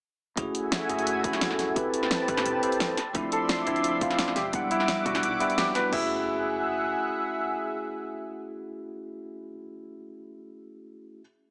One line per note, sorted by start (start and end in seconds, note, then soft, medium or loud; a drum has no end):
0.36 0.46 F#1 medium
0.36 0.87 A3 medium
0.36 1.75 A3 medium
0.36 0.87 C#4 medium
0.36 0.88 E4 medium
0.36 1.75 F#4 medium
0.36 0.88 F#4 medium
0.36 0.88 G#4 loud
0.36 1.75 E5 medium
0.36 1.75 G#5 medium
0.36 kick loud
0.36 closed hi-hat loud
0.55 closed hi-hat medium
0.72 snare loud
0.72 closed hi-hat medium
0.89 1.26 F#1 loud
0.89 1.22 A3 medium
0.89 1.22 C#4 medium
0.89 1.22 E4 medium
0.89 1.22 F#4 medium
0.89 1.23 G#4 medium
0.89 kick medium
0.89 closed hi-hat medium
0.99 closed hi-hat soft
1.07 closed hi-hat loud
1.23 1.75 F#2 medium
1.23 1.31 A3 medium
1.23 1.31 C#4 medium
1.23 1.32 E4 medium
1.23 1.32 F#4 medium
1.23 1.32 A4 medium
1.23 kick loud
1.23 closed hi-hat medium
1.33 snare soft
1.33 closed hi-hat soft
1.41 snare loud
1.41 closed hi-hat medium
1.51 snare soft
1.59 snare soft
1.59 closed hi-hat medium
1.75 2.26 C4 loud
1.75 2.96 C4 medium
1.75 2.26 E4 medium
1.75 2.96 G4 medium
1.75 2.26 G4 medium
1.75 2.27 A4 medium
1.75 2.96 B4 medium
1.75 2.27 B4 loud
1.75 2.96 A5 medium
1.75 kick loud
1.75 closed hi-hat medium
1.94 closed hi-hat medium
2.03 snare soft
2.11 snare loud
2.11 closed hi-hat medium
2.27 2.44 A1 loud
2.27 2.60 C4 medium
2.27 2.61 E4 medium
2.27 2.61 G4 medium
2.27 2.61 A4 medium
2.27 2.61 B4 medium
2.27 kick loud
2.27 closed hi-hat medium
2.37 snare medium
2.37 closed hi-hat soft
2.46 2.54 E1 medium
2.46 closed hi-hat loud
2.62 2.70 C4 medium
2.62 2.70 E4 medium
2.62 2.70 G4 medium
2.62 2.70 A4 medium
2.62 2.71 C5 loud
2.62 closed hi-hat medium
2.72 closed hi-hat soft
2.80 snare loud
2.80 closed hi-hat medium
2.97 4.35 F3 medium
2.97 4.35 D5 medium
2.97 4.35 E5 medium
2.97 4.35 C6 medium
2.97 snare soft
2.97 closed hi-hat medium
3.13 3.23 D2 loud
3.13 3.64 F3 medium
3.13 3.65 A3 medium
3.13 3.65 C4 medium
3.13 3.66 D4 medium
3.13 3.66 E4 loud
3.13 kick loud
3.13 closed hi-hat medium
3.32 3.42 A4 medium
3.32 closed hi-hat medium
3.49 snare loud
3.49 closed hi-hat medium
3.66 4.01 D2 loud
3.66 3.99 F3 medium
3.66 4.00 A3 medium
3.66 4.00 C4 medium
3.66 4.00 D4 medium
3.66 3.77 E4 medium
3.66 4.00 E4 medium
3.66 kick medium
3.66 closed hi-hat medium
3.76 closed hi-hat soft
3.84 closed hi-hat medium
4.01 4.35 A1 medium
4.01 4.09 F3 medium
4.01 4.09 A3 medium
4.01 4.09 C4 medium
4.01 4.09 D4 medium
4.01 4.11 F4 medium
4.01 4.09 F4 medium
4.01 kick loud
4.01 closed hi-hat medium
4.11 snare soft
4.11 closed hi-hat soft
4.19 snare loud
4.19 closed hi-hat medium
4.28 snare soft
4.36 4.70 E1 medium
4.36 5.91 G3 medium
4.36 4.46 G4 medium
4.36 5.91 E5 medium
4.36 5.91 F#5 medium
4.36 5.91 D6 medium
4.36 snare soft
4.36 closed hi-hat medium
4.52 5.03 G3 medium
4.52 5.03 B3 medium
4.52 5.04 D4 medium
4.52 5.04 E4 medium
4.52 5.05 F#5 loud
4.52 kick loud
4.52 closed hi-hat medium
4.71 4.81 E4 medium
4.71 closed hi-hat medium
4.80 snare soft
4.88 snare loud
4.88 closed hi-hat medium
5.05 5.22 E1 medium
5.05 5.38 G3 medium
5.05 5.38 B3 medium
5.05 5.39 D4 medium
5.05 5.39 E4 medium
5.05 5.15 F#4 medium
5.05 5.39 F#4 medium
5.05 kick loud
5.05 closed hi-hat medium
5.15 snare medium
5.15 closed hi-hat soft
5.23 5.31 B1 loud
5.23 closed hi-hat medium
5.40 5.47 G3 medium
5.40 5.48 B3 medium
5.40 5.48 D4 medium
5.40 5.57 E4 medium
5.40 5.48 E4 medium
5.40 5.48 G4 medium
5.40 closed hi-hat medium
5.50 closed hi-hat soft
5.58 5.74 G4 medium
5.58 snare loud
5.58 closed hi-hat medium
5.75 5.85 B4 loud
5.75 snare soft
5.75 closed hi-hat medium
5.90 6.93 F#1 medium
5.90 9.41 A3 medium
5.90 9.42 C#4 medium
5.90 6.09 E4 loud
5.90 9.43 E4 medium
5.90 9.44 F#4 medium
5.90 9.43 G#4 medium
5.90 9.43 E5 medium
5.90 9.43 F#5 medium
5.90 kick loud
5.90 crash medium
5.95 9.46 G#4 medium